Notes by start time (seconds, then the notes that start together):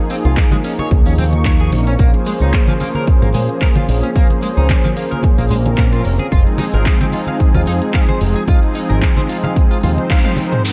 Already playing: F3 A#3 D#4 G#4
0.10 C4, open hi-hat
0.25 C2 F4, closed hi-hat
0.37 kick, clap, closed hi-hat, muted conga
0.51 G#3, closed hi-hat, high conga
0.64 C#4, open hi-hat
0.79 C#5, closed hi-hat, muted conga, high conga
0.91 C#2, kick, closed hi-hat
1.06 D#2 C#4, open hi-hat
1.18 F3 A#3 C4 D#4 C#6, open hi-hat, low conga
1.33 closed hi-hat, muted conga
1.45 C#5, kick, clap, closed hi-hat
1.60 G#4, closed hi-hat
1.72 A#1 F3 A#3 C4 C#4 A#4, open hi-hat, muted conga
1.87 C#4, closed hi-hat
1.99 A#1 F3 A#3 C#4 G#4 C5, kick, closed hi-hat
2.14 closed hi-hat
2.26 G#3, open hi-hat
2.40 C#2 D#4, closed hi-hat, muted conga
2.53 kick, clap, closed hi-hat
2.67 F3, closed hi-hat, high conga
2.80 A#3, open hi-hat, muted conga
2.95 A#4, closed hi-hat, high conga
3.07 muted picked electric bass stroke, kick, closed hi-hat
3.22 G#1 A#3, closed hi-hat, low conga
3.34 A#2 G#3, open hi-hat, muted conga
3.49 closed hi-hat
3.62 A#4, kick, clap, open hi-hat
3.75 F4, closed hi-hat, muted conga, high conga
3.88 A#1 F3 A#3 C4 C#4 G#4, open hi-hat
4.03 C#4, closed hi-hat
4.15 F3 A#3 C#4 G#4 C5, kick, closed hi-hat
4.30 closed hi-hat, muted conga
4.42 G#3, open hi-hat
4.57 C#2 D#4, closed hi-hat
4.69 kick, clap, closed hi-hat, muted conga
4.84 F3, closed hi-hat, high conga
4.97 A#3, open hi-hat
5.11 A#4, closed hi-hat, high conga
5.23 kick, closed hi-hat, muted conga
5.38 A#1 A#3, open hi-hat
5.50 A#1 F3 G#3 A#3 C4 C#4 A#4, open hi-hat, low conga
5.65 F3 A#3 C4 C#4 A#4, closed hi-hat, muted conga
5.78 A#2 A#4, kick, clap, closed hi-hat
5.93 F4, closed hi-hat
6.05 F1, open hi-hat
6.19 G#4, closed hi-hat, muted conga
6.31 F1 F3 G#3 C4 D#4 F4 G#4, kick, closed hi-hat
6.47 closed hi-hat
6.58 D#4, open hi-hat, muted conga
6.74 G#1 A#4, closed hi-hat
6.86 kick, clap, closed hi-hat
7.01 C4, closed hi-hat, high conga
7.12 F4, open hi-hat, muted conga
7.27 F5, closed hi-hat, high conga
7.40 muted picked electric bass stroke, kick, closed hi-hat
7.55 D#2 F4, closed hi-hat, muted conga, low conga
7.67 F2 D#4, open hi-hat
7.82 closed hi-hat
7.94 F5, kick, clap, open hi-hat
8.09 C5, closed hi-hat, muted conga, high conga
8.21 F1 F3 G#3 C4 D#4 G#4, open hi-hat
8.36 G#4, closed hi-hat
8.47 F3 G#3 C4 D#4 F4 G#4, kick, closed hi-hat, muted conga
8.63 closed hi-hat
8.75 D#4, open hi-hat
8.90 G#1 A#4, closed hi-hat
9.02 kick, clap, closed hi-hat, muted conga
9.17 C4, closed hi-hat, high conga
9.29 F4, open hi-hat
9.44 F5, closed hi-hat, muted conga, high conga
9.56 kick, closed hi-hat
9.71 F4, open hi-hat
9.83 D#2 F3 G#3 C4 D#4 F4 C5, open hi-hat, low conga
9.98 closed hi-hat, muted conga
10.10 F5, kick, snare, clap, closed hi-hat
10.25 F5, closed hi-hat, high tom
10.37 F3 G#3 C4 D#4 A#4, open hi-hat, muted conga
10.52 C5, closed hi-hat, mid tom
10.64 F#3 G#3 A#3 C4 D#4 G#4, crash, downlifter